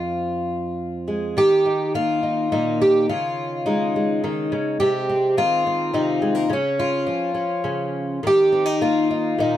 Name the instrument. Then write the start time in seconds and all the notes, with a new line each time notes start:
twelve-string acoustic guitar
Already playing: F2 F4
1.08 G#3
1.37 D#3 G4
1.66 D#4
1.94 A#3 F4
2.23 D#4
2.52 A#2 D#4
2.82 G4
3.09 C#3 F4
3.66 G#3 D#4
3.96 G#3
4.24 D#3
4.52 C#3
4.80 C3 G4
5.09 C4
5.37 D#3 F4
5.67 C4
5.93 C3 D#4
6.22 G#3
6.35 A#3
6.49 C#3 C#4
6.80 F4
7.07 F3
7.34 C#4
7.64 C#3
8.23 D#3 G4
8.52 C4
8.66 D#4
8.81 A#3 F4
9.11 D#4
9.38 A#2 D#4